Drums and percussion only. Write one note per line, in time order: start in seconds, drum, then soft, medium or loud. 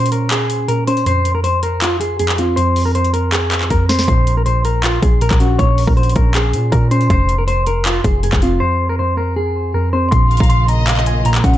0.06 closed hi-hat medium
0.12 closed hi-hat medium
0.31 clap loud
0.31 closed hi-hat medium
0.50 closed hi-hat medium
0.69 closed hi-hat medium
0.87 closed hi-hat medium
0.97 closed hi-hat soft
1.06 closed hi-hat medium
1.25 closed hi-hat medium
1.44 closed hi-hat medium
1.63 closed hi-hat medium
1.82 clap loud
1.82 closed hi-hat medium
2.01 closed hi-hat medium
2.19 closed hi-hat medium
2.29 clap loud
2.38 closed hi-hat medium
2.57 closed hi-hat medium
2.76 open hi-hat medium
2.95 closed hi-hat medium
3.04 closed hi-hat medium
3.14 closed hi-hat medium
3.33 clap loud
3.33 closed hi-hat medium
3.52 clap medium
3.52 closed hi-hat medium
3.61 clap medium
3.70 kick medium
3.70 closed hi-hat medium
3.89 snare loud
3.89 closed hi-hat soft
3.94 closed hi-hat medium
3.99 snare loud
3.99 closed hi-hat medium
4.03 closed hi-hat medium
4.08 kick loud
4.08 closed hi-hat medium
4.27 closed hi-hat medium
4.46 closed hi-hat medium
4.65 closed hi-hat medium
4.84 clap loud
4.84 closed hi-hat medium
5.03 kick medium
5.03 closed hi-hat medium
5.21 closed hi-hat medium
5.31 kick loud
5.31 clap loud
5.40 closed hi-hat medium
5.59 kick loud
5.59 closed hi-hat medium
5.78 open hi-hat medium
5.87 kick medium
5.97 closed hi-hat soft
6.03 closed hi-hat medium
6.09 closed hi-hat medium
6.16 kick medium
6.16 closed hi-hat medium
6.35 clap loud
6.35 closed hi-hat medium
6.53 closed hi-hat medium
6.72 kick medium
6.72 closed hi-hat medium
6.91 closed hi-hat medium
7.01 closed hi-hat soft
7.10 kick loud
7.10 closed hi-hat medium
7.29 closed hi-hat medium
7.48 closed hi-hat medium
7.67 closed hi-hat medium
7.86 clap loud
7.86 closed hi-hat medium
8.04 kick loud
8.04 closed hi-hat medium
8.23 closed hi-hat medium
8.33 kick loud
8.33 clap loud
8.42 closed hi-hat medium
10.12 kick loud
10.12 closed hi-hat medium
10.31 closed hi-hat soft
10.37 kick loud
10.37 closed hi-hat medium
10.43 closed hi-hat medium
10.50 closed hi-hat medium
10.68 closed hi-hat medium
10.87 clap loud
10.87 closed hi-hat medium
10.97 clap medium
11.06 closed hi-hat medium
11.25 closed hi-hat medium
11.35 clap loud
11.44 kick loud
11.44 closed hi-hat medium
11.54 closed hi-hat soft